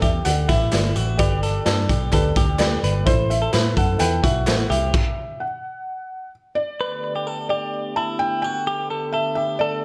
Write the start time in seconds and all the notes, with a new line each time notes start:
Already playing: G4 A4 B4
0.02 E2 G4 E5, kick, closed hi-hat
0.25 D2 G4 A4 D5 F#5, clap, closed hi-hat
0.48 A1 E4 E5, kick, snare, closed hi-hat
0.71 G1 G4 A4 D5, snare, clap, closed hi-hat
0.96 A1 F#4, closed hi-hat
1.17 G1 G4 A4 B4 D5, kick, closed hi-hat
1.43 A4, closed hi-hat
1.65 G2 G4 A4 D5, snare, clap, closed hi-hat
1.89 B1 G4, kick, closed hi-hat
2.12 D2 G4 A4 B4, kick, clap, closed hi-hat
2.36 D2 G4, kick, closed hi-hat
2.59 G4 A4 B4 D5, snare, clap, closed hi-hat
2.83 G1 B4, closed hi-hat
3.05 A1 E4 A4 C5, kick, closed hi-hat
3.30 E5, closed hi-hat
3.42 A4
3.52 A2 E4 A4 B4 C5, snare, clap, closed hi-hat
3.77 F#2 A4 F#5, kick, closed hi-hat
3.98 E2 E4 A4 B4 G5, clap, closed hi-hat
4.24 B1 F#4 E5, kick, closed hi-hat
4.46 A1 E4 A4 C5, snare, clap, closed hi-hat
4.70 C2 G4 E5, closed hi-hat
4.94 kick, crash
5.40 F#5
6.55 D5
6.80 D3 A3 B3 G4 B4
7.16 G4
7.27 A4
7.49 G4 D5
7.96 E4 A5
8.19 G5
8.42 F#4 G5
8.67 G4
8.90 A4
9.12 A4 E5
9.35 G4 E5
9.59 A4 D5